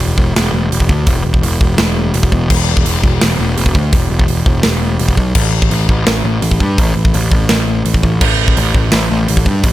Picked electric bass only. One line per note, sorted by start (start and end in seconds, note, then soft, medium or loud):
0.00 0.16 E1 medium
0.18 0.34 E1 medium
0.35 0.52 E1 medium
0.53 0.69 E1 medium
0.71 0.87 E1 medium
0.89 1.05 D2 medium
1.07 1.23 E1 medium
1.25 1.41 E1 medium
1.43 1.59 E1 medium
1.61 1.77 E1 medium
1.78 2.11 E1 medium
2.14 2.30 E1 medium
2.32 2.48 E1 medium
2.51 2.83 E1 medium
2.86 3.02 E1 medium
3.04 3.20 E1 medium
3.21 3.38 E1 medium
3.39 3.55 E1 medium
3.58 3.73 E1 medium
3.75 3.91 D2 medium
3.93 4.09 E1 medium
4.10 4.27 E1 medium
4.28 4.44 E1 medium
4.46 4.62 E1 medium
4.64 4.96 E1 medium
4.99 5.16 E1 medium
5.17 5.34 B1 medium
5.35 5.68 A1 medium
5.71 5.87 A1 medium
5.89 6.05 A1 loud
6.07 6.23 A1 medium
6.24 6.41 A1 medium
6.42 6.59 A1 medium
6.61 6.77 G2 medium
6.79 6.95 A1 medium
6.96 7.12 A1 medium
7.15 7.30 A1 medium
7.32 7.48 A1 medium
7.50 7.82 A1 loud
7.85 8.01 A1 medium
8.04 8.20 A1 medium
8.21 8.54 A1 loud
8.57 8.73 A1 medium
8.75 8.91 A1 medium
8.93 9.09 A1 medium
9.11 9.27 A1 loud
9.29 9.45 A1 medium
9.46 9.62 G2 medium
9.64 9.73 A1 medium